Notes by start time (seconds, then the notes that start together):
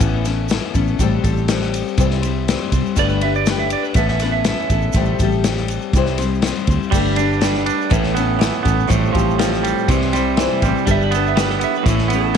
0.00 A1 A2 E3 B3 C#4 E4 A4, kick, ride, shaker
0.25 B3 C#4 E4 A4, snare, ride, shaker
0.49 B3 C#4 E4 A4, snare, ride, shaker
0.73 A1 B3 C#4 E4 A4, kick, ride, shaker
0.87 shaker
0.99 A1 A2 F3 G3 C4 G4 A4, kick, ride, shaker
1.23 A1 G3 C4 G4 A4, kick, ride, shaker
1.37 shaker
1.48 G3 C4 G4 A4, snare, ride, shaker
1.61 snare, shaker
1.74 ride, shaker
1.88 shaker
1.97 C2 C3 E3 G3 C4 E4 C5, kick, ride, shaker
2.11 snare
2.22 G3 C4 E4 C5, ride, shaker
2.48 G3 C4 E4 C5, snare, ride, shaker
2.72 C2 G3 C4 E4 C5, kick, ride, shaker
2.86 shaker
2.96 G1 G3 A3 D4 G4 B4 D5, kick, ride, shaker
3.09 B4, shaker
3.21 D4 G4 B4 E5, ride
3.35 D5, shaker
3.46 A3 D4 B4, snare, ride, shaker
3.50 G4
3.59 E5, shaker
3.70 D5, ride, shaker
3.83 B4, shaker
3.94 A1 A2 E3 B3 C#4 E4 A4 E5, kick, ride, shaker
4.08 E5, snare
4.20 B3 C#4 E4 A4 B4, snare, ride, shaker
4.32 E5
4.44 B3 C#4 E4 A4, snare, ride, shaker
4.49 E5
4.70 A1 B3 C#4 E4 A4, kick, ride, shaker
4.82 shaker
4.93 A1 A2 F3 G3 C4, kick, ride, shaker
4.97 G4 A4
5.05 shaker
5.19 A1 C4 G4 A4, kick, ride, shaker
5.23 G3
5.32 shaker
5.44 G3 C4 G4 A4, snare, ride, shaker
5.57 snare, shaker
5.68 ride, shaker
5.81 shaker
5.93 C2 C3 E3 G3 C4 E4 C5, kick, ride, shaker
6.06 snare, shaker
6.18 G3 C4 E4 C5, snare, ride, shaker
6.35 shaker
6.42 G3 C4 E4, snare, ride
6.46 C5, shaker
6.59 shaker
6.67 D2 C4 E4 C5, kick, ride, shaker
6.72 G3
6.83 shaker
6.91 G1 G3 A3 D4 G4 B4, kick, crash, shaker
7.07 shaker
7.16 D4 G4 B4, ride, shaker
7.21 D4
7.33 shaker
7.41 G3 A3 D4 G4 B4, snare, ride, shaker
7.54 snare, shaker
7.66 D4, ride, shaker
7.81 shaker
7.90 A1 A2 E3 B3 C#4 E4 A4, kick, ride, shaker
8.04 snare
8.15 B3 C#4 E4 A4, ride, shaker
8.39 E3 B3 C#4 E4 A4, snare, ride, shaker
8.63 A1 B3 C#4 E4 A4, kick, ride
8.67 B3, shaker
8.80 shaker
8.87 A1 A2 F3 G3 C4 G4 A4, kick, ride, shaker
9.05 shaker
9.13 A1 F3 C4 G4 A4, kick, ride
9.17 G3, shaker
9.30 shaker
9.38 F3 G3 C4 G4 A4, snare, ride, shaker
9.54 snare, shaker
9.63 G3, ride, shaker
9.79 shaker
9.88 C2 C3 E3 G3 C4 E4 C5, kick, ride, shaker
10.01 snare
10.13 G3 C4 E4 C5, snare, ride, shaker
10.37 E3 G3 C4 E4, snare, ride, shaker
10.41 C5
10.62 A1 G3 E4 C5, kick, ride, shaker
10.66 G3 C4
10.78 shaker
10.86 G1 G3 D4 A4 B4, kick, ride, shaker
10.91 E5
11.02 B4, shaker
11.11 B3 A4 B4, ride, shaker
11.16 D4
11.27 E5, shaker
11.36 G3 D4 A4 B4, snare, ride, shaker
11.50 A4, snare, shaker
11.59 B3, ride, shaker
11.64 E5
11.75 B4, shaker
11.83 A1 A2, kick, ride
11.88 E3 A3 C#4 E4 A4 B4, shaker
11.98 snare
12.08 B3 E4 B4, ride
12.13 A3 C#4 A4, shaker
12.34 E3